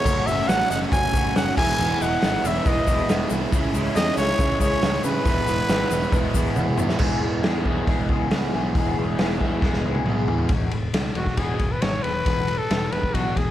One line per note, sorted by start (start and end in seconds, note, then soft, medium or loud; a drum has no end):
0.00 0.24 A4 medium
0.00 0.28 C#5 loud
0.05 0.19 F#1 loud
0.05 0.26 F#2 medium
0.05 0.27 C#3 loud
0.05 0.28 F#3 loud
0.05 0.28 A3 loud
0.05 0.29 C#4 loud
0.05 0.29 F#4 loud
0.05 kick loud
0.05 crash loud
0.05 shaker medium
0.27 0.41 F#1 medium
0.27 0.48 F#2 medium
0.27 0.49 C#3 medium
0.27 0.50 F#3 medium
0.27 0.50 A3 medium
0.27 0.50 C#4 medium
0.27 0.51 F#4 medium
0.27 0.49 C#5 medium
0.27 0.49 E5 loud
0.27 open hi-hat medium
0.27 shaker medium
0.48 0.63 A1 medium
0.48 0.70 F#2 medium
0.48 0.71 C#3 medium
0.48 0.71 F#3 medium
0.48 0.72 A3 medium
0.48 0.72 C#4 medium
0.48 0.71 C#5 loud
0.48 0.70 F#5 loud
0.48 snare loud
0.48 open hi-hat loud
0.48 shaker medium
0.52 0.73 F#4 loud
0.70 0.85 F#1 medium
0.70 0.92 F#2 medium
0.70 0.92 C#3 medium
0.70 0.93 F#3 medium
0.70 0.94 A3 medium
0.70 0.94 C#4 medium
0.70 0.80 D#5 medium
0.70 0.80 F#5 loud
0.70 open hi-hat medium
0.70 shaker loud
0.74 0.95 F#4 medium
0.83 shaker soft
0.92 1.06 F#1 loud
0.92 1.13 F#2 medium
0.92 1.14 C#3 loud
0.92 1.15 F#3 loud
0.92 1.15 A3 loud
0.92 1.16 C#4 loud
0.92 1.33 C#5 medium
0.92 1.33 G#5 loud
0.92 kick loud
0.92 open hi-hat medium
0.92 shaker medium
0.96 1.16 F#4 loud
1.13 1.28 F#1 medium
1.13 1.35 F#2 medium
1.13 1.36 C#3 medium
1.13 1.36 F#3 medium
1.13 1.36 A3 medium
1.13 1.37 C#4 medium
1.13 kick loud
1.13 open hi-hat medium
1.13 shaker loud
1.17 1.38 F#4 medium
1.27 shaker soft
1.35 1.50 F#1 loud
1.35 1.56 F#2 medium
1.35 1.57 C#3 medium
1.35 1.57 F#3 loud
1.35 1.57 A3 loud
1.35 1.58 C#4 loud
1.35 1.58 F#4 loud
1.35 1.56 C#5 loud
1.35 1.57 F#5 loud
1.35 snare loud
1.35 open hi-hat medium
1.35 shaker medium
1.57 1.71 E1 medium
1.57 1.78 E2 loud
1.57 1.79 B2 loud
1.57 1.81 E3 loud
1.57 1.81 G#3 loud
1.57 1.81 B3 loud
1.57 1.82 E4 loud
1.57 1.98 E5 loud
1.57 2.03 G#5 loud
1.57 kick loud
1.57 crash loud
1.79 1.93 E1 loud
1.79 2.00 E2 loud
1.79 2.02 B2 medium
1.79 2.03 E3 medium
1.79 2.03 G#3 loud
1.79 2.02 B3 medium
1.79 2.04 E4 loud
1.79 shaker medium
2.01 2.15 E1 loud
2.01 2.22 E2 medium
2.01 2.23 B2 medium
2.01 2.24 E3 medium
2.01 2.25 G#3 medium
2.01 2.24 B3 medium
2.01 2.25 E4 medium
2.01 2.45 D#5 medium
2.01 2.48 F#5 loud
2.01 open hi-hat medium
2.01 shaker medium
2.22 2.37 G#1 medium
2.22 2.43 E2 medium
2.22 2.44 B2 medium
2.22 2.46 E3 medium
2.22 2.46 G#3 loud
2.22 2.46 B3 medium
2.22 2.47 E4 medium
2.22 snare loud
2.22 open hi-hat medium
2.22 shaker medium
2.44 2.58 E1 medium
2.44 2.65 E2 loud
2.44 2.66 B2 medium
2.44 2.67 E3 medium
2.44 2.68 G#3 medium
2.44 2.68 B3 loud
2.44 2.69 E4 loud
2.44 2.67 C#5 medium
2.44 2.69 E5 loud
2.44 open hi-hat medium
2.44 shaker loud
2.66 2.80 E1 loud
2.66 2.87 E2 medium
2.66 2.87 B2 loud
2.66 2.89 E3 loud
2.66 2.89 G#3 loud
2.66 2.89 B3 loud
2.66 2.90 E4 loud
2.66 3.32 B4 medium
2.66 3.32 D#5 medium
2.66 kick loud
2.66 open hi-hat medium
2.66 shaker medium
2.87 3.01 E1 medium
2.87 3.09 E2 medium
2.87 3.10 B2 medium
2.87 3.10 E3 medium
2.87 3.12 G#3 medium
2.87 3.11 B3 medium
2.87 3.12 E4 medium
2.87 kick medium
2.87 open hi-hat medium
2.87 shaker loud
2.98 shaker soft
3.09 3.24 E1 loud
3.09 3.31 E2 medium
3.09 3.31 B2 medium
3.09 3.32 E3 loud
3.09 3.33 G#3 loud
3.09 3.33 B3 medium
3.09 3.34 E4 medium
3.09 snare loud
3.09 open hi-hat loud
3.09 shaker medium
3.30 3.45 C2 medium
3.30 3.52 E2 medium
3.30 3.52 B2 loud
3.30 3.54 E3 loud
3.30 3.54 G#3 medium
3.30 3.53 B3 loud
3.30 open hi-hat medium
3.30 shaker loud
3.35 3.55 E4 medium
3.53 3.67 C#2 loud
3.53 3.74 C#3 loud
3.53 3.75 E3 loud
3.53 3.76 G#3 loud
3.53 3.76 C#4 loud
3.53 3.77 E4 loud
3.53 kick loud
3.53 open hi-hat medium
3.53 shaker medium
3.74 3.88 C#2 loud
3.74 3.95 C#3 medium
3.74 3.97 E3 medium
3.74 3.97 G#3 medium
3.74 3.97 C#4 medium
3.74 3.99 E4 medium
3.74 open hi-hat medium
3.74 shaker medium
3.96 4.10 E2 medium
3.96 4.18 C#3 medium
3.96 4.19 E3 medium
3.96 4.19 G#3 medium
3.96 4.19 C#4 loud
3.96 4.21 E4 medium
3.96 4.16 G#4 loud
3.96 4.16 D#5 loud
3.96 snare loud
3.96 open hi-hat loud
3.96 shaker medium
4.17 4.32 C#2 loud
4.17 4.38 C#3 medium
4.17 4.40 E3 medium
4.17 4.40 G#3 medium
4.17 4.40 C#4 loud
4.17 4.42 E4 medium
4.17 4.58 G#4 medium
4.17 4.59 C#5 loud
4.17 open hi-hat medium
4.17 shaker loud
4.28 shaker soft
4.39 4.53 C#2 loud
4.39 4.59 C#3 loud
4.39 4.61 E3 loud
4.39 4.61 G#3 loud
4.39 4.61 C#4 medium
4.39 4.63 E4 loud
4.39 kick loud
4.39 open hi-hat medium
4.39 shaker medium
4.60 4.75 C#2 loud
4.60 4.81 C#3 medium
4.60 4.82 E3 medium
4.60 4.83 G#3 medium
4.60 4.83 C#4 medium
4.60 4.84 E4 medium
4.60 5.02 G#4 medium
4.60 5.01 C#5 loud
4.60 kick medium
4.60 open hi-hat medium
4.60 shaker loud
4.82 4.97 C#2 medium
4.82 5.02 C#3 medium
4.82 5.04 E3 loud
4.82 5.04 G#3 medium
4.82 5.04 C#4 loud
4.82 5.05 E4 medium
4.82 snare loud
4.82 open hi-hat loud
4.82 shaker medium
5.04 5.25 C#3 medium
5.04 5.19 C#3 medium
5.04 5.26 E3 medium
5.04 5.27 G#3 loud
5.04 5.26 C#4 loud
5.04 5.28 E4 loud
5.04 6.54 G#4 medium
5.04 6.53 B4 loud
5.04 open hi-hat medium
5.04 shaker loud
5.25 5.40 E1 loud
5.25 5.46 E2 loud
5.25 5.47 B2 loud
5.25 5.48 E3 loud
5.25 5.48 G#3 loud
5.25 5.48 B3 loud
5.25 5.49 E4 loud
5.25 kick loud
5.25 open hi-hat medium
5.25 shaker medium
5.47 5.61 E1 medium
5.47 5.67 E2 medium
5.47 5.68 B2 medium
5.47 5.68 E3 medium
5.47 5.69 G#3 medium
5.47 5.70 B3 medium
5.47 5.70 E4 medium
5.47 open hi-hat medium
5.47 shaker loud
5.69 5.83 G#1 medium
5.69 5.90 E2 medium
5.69 5.91 B2 medium
5.69 5.92 E3 medium
5.69 5.92 G#3 medium
5.69 5.93 B3 loud
5.69 5.93 E4 medium
5.69 snare loud
5.69 open hi-hat medium
5.69 shaker medium
5.90 6.05 E1 medium
5.90 6.12 E2 medium
5.90 6.12 B2 medium
5.90 6.13 E3 medium
5.90 6.13 G#3 loud
5.90 6.14 B3 medium
5.90 6.14 E4 loud
5.90 open hi-hat medium
5.90 shaker loud
6.02 shaker soft
6.12 6.27 E1 loud
6.12 6.34 E2 loud
6.12 6.34 B2 medium
6.12 6.34 E3 loud
6.12 6.35 G#3 loud
6.12 6.36 B3 loud
6.12 6.36 E4 loud
6.12 kick loud
6.12 open hi-hat medium
6.12 shaker medium
6.34 6.49 E1 medium
6.34 6.56 E2 medium
6.34 6.57 B2 medium
6.34 6.57 E3 medium
6.34 6.58 G#3 medium
6.34 6.58 B3 medium
6.34 6.58 E4 medium
6.34 kick medium
6.34 open hi-hat medium
6.34 shaker loud
6.56 6.71 E1 loud
6.56 6.78 E2 loud
6.56 6.78 B2 loud
6.56 6.79 E3 loud
6.56 6.79 G#3 medium
6.56 6.80 B3 loud
6.56 6.80 E4 medium
6.56 high tom medium
6.56 shaker medium
6.78 6.93 E2 medium
6.78 6.99 E2 medium
6.78 6.99 B2 medium
6.78 7.00 E3 medium
6.78 7.00 G#3 medium
6.78 7.01 B3 loud
6.78 7.01 E4 loud
6.78 mid tom medium
6.78 shaker loud
6.89 snare medium
6.89 shaker soft
6.99 7.21 E1 loud
6.99 7.68 E2 medium
6.99 7.45 B2 medium
6.99 7.26 E3 medium
6.99 7.24 G#3 medium
6.99 7.20 E4 medium
6.99 kick loud
6.99 crash loud
7.03 7.23 B3 medium
7.03 7.22 G#4 medium
7.21 7.44 E1 loud
7.21 7.45 B3 medium
7.21 7.46 E4 medium
7.21 7.46 G#4 medium
7.25 7.43 E3 medium
7.25 7.44 G#3 medium
7.43 7.64 E2 medium
7.43 7.67 E3 medium
7.43 7.66 G#3 medium
7.43 7.66 B3 medium
7.43 7.64 E4 medium
7.43 7.65 G#4 medium
7.43 snare loud
7.43 open hi-hat medium
7.65 7.87 E1 medium
7.65 8.31 E2 medium
7.65 8.11 B2 medium
7.65 7.87 E3 medium
7.65 7.88 G#3 medium
7.65 7.89 B3 medium
7.65 8.34 E4 medium
7.65 7.90 G#4 medium
7.65 kick medium
7.87 8.08 E1 medium
7.87 8.12 E3 medium
7.87 8.11 G#3 medium
7.87 8.10 B3 medium
7.87 8.09 G#4 medium
7.87 kick loud
7.87 open hi-hat medium
8.09 8.30 C#2 medium
8.09 8.33 E3 medium
8.09 8.33 G#3 medium
8.09 8.34 B3 medium
8.09 8.35 G#4 medium
8.09 kick medium
8.31 8.53 C#2 medium
8.31 8.75 E2 medium
8.31 8.75 B2 medium
8.31 8.56 E3 medium
8.31 8.56 G#3 medium
8.31 8.54 B3 loud
8.31 8.52 E4 medium
8.31 snare loud
8.31 open hi-hat medium
8.35 8.53 G#4 loud
8.53 8.74 B1 medium
8.53 8.77 G#3 medium
8.53 8.77 B3 medium
8.53 8.77 E4 medium
8.53 8.77 G#4 medium
8.57 8.76 E3 medium
8.75 8.96 E1 medium
8.75 9.19 E2 medium
8.75 9.19 B2 medium
8.75 9.00 E3 loud
8.75 8.99 G#3 loud
8.75 8.98 B3 loud
8.75 8.96 E4 loud
8.75 8.97 G#4 medium
8.75 kick loud
8.75 open hi-hat medium
8.97 9.18 E1 medium
8.97 9.19 G#3 medium
8.97 9.20 B3 medium
8.97 9.20 E4 medium
8.97 9.21 G#4 medium
9.01 9.18 E3 medium
9.18 9.40 E1 medium
9.18 9.41 E3 medium
9.18 9.41 G#3 medium
9.18 9.40 B3 medium
9.18 9.38 E4 medium
9.18 9.40 G#4 medium
9.18 snare loud
9.18 open hi-hat medium
9.40 9.62 E2 medium
9.40 9.86 E2 medium
9.40 9.86 B2 medium
9.40 9.62 E3 medium
9.40 9.63 G#3 medium
9.40 9.64 B3 medium
9.40 10.08 E4 medium
9.40 9.65 G#4 medium
9.40 kick medium
9.62 9.84 E1 loud
9.62 9.87 E3 medium
9.62 9.86 G#3 medium
9.62 9.86 B3 medium
9.62 9.84 G#4 medium
9.62 kick loud
9.62 snare medium
9.73 snare medium
9.85 10.05 C#2 medium
9.85 10.06 E3 medium
9.85 10.07 G#3 medium
9.85 10.08 B3 medium
9.85 10.09 G#4 medium
9.95 high tom medium
10.06 10.28 B1 medium
10.06 10.49 E2 medium
10.06 10.50 B2 medium
10.06 10.30 E3 medium
10.06 10.30 G#3 loud
10.06 10.29 B3 medium
10.06 10.26 E4 medium
10.06 mid tom medium
10.10 10.27 G#4 loud
10.28 10.49 E2 medium
10.28 10.50 G#3 medium
10.28 10.50 B3 medium
10.28 10.49 E4 medium
10.28 10.49 G#4 medium
10.28 floor tom medium
10.32 10.51 E3 medium
10.38 floor tom medium
10.49 10.66 E1 loud
10.49 10.71 E2 medium
10.49 10.72 B2 medium
10.49 10.72 E3 medium
10.49 kick loud
10.49 ride medium
10.71 10.87 E1 medium
10.71 10.93 E2 medium
10.71 10.93 B2 medium
10.71 ride medium
10.93 11.10 C#2 medium
10.93 11.15 E2 medium
10.93 11.15 B2 medium
10.93 snare loud
10.93 ride loud
11.15 11.32 E1 medium
11.15 11.36 E2 medium
11.15 11.37 B2 medium
11.15 11.40 F#4 medium
11.15 ride medium
11.26 kick medium
11.26 snare soft
11.37 11.54 E1 loud
11.37 11.59 E2 medium
11.37 11.60 B2 medium
11.37 11.60 E3 medium
11.37 11.74 G#4 medium
11.37 kick medium
11.37 ride medium
11.59 11.76 E1 medium
11.59 11.80 E2 medium
11.59 11.80 B2 medium
11.59 kick medium
11.59 ride medium
11.72 11.83 B4 medium
11.82 11.98 G#1 medium
11.82 12.02 E2 medium
11.82 12.03 B2 medium
11.82 12.04 C#5 loud
11.82 snare loud
11.82 ride medium
12.03 12.20 E1 medium
12.03 12.25 E2 medium
12.03 12.25 B2 medium
12.03 12.60 B4 loud
12.03 ride medium
12.26 12.58 E1 medium
12.26 12.47 E2 medium
12.26 12.48 B2 medium
12.26 12.48 E3 loud
12.26 kick medium
12.26 ride medium
12.48 12.68 E2 medium
12.48 12.69 B2 medium
12.48 ride medium
12.58 12.94 A4 loud
12.70 12.86 E1 medium
12.70 12.90 E2 medium
12.70 12.90 B2 medium
12.70 snare loud
12.70 ride medium
12.92 13.08 E1 medium
12.92 13.12 E2 medium
12.92 13.13 B2 medium
12.92 13.16 B4 loud
12.92 ride medium
13.03 kick medium
13.14 13.30 B1 medium
13.14 13.35 E2 medium
13.14 13.36 B2 medium
13.14 13.36 E3 medium
13.14 13.39 F#4 medium
13.14 kick medium
13.14 ride medium
13.36 13.51 E1 medium
13.36 13.51 E2 medium
13.36 13.51 B2 medium
13.36 13.51 G#4 medium
13.36 kick medium
13.36 ride medium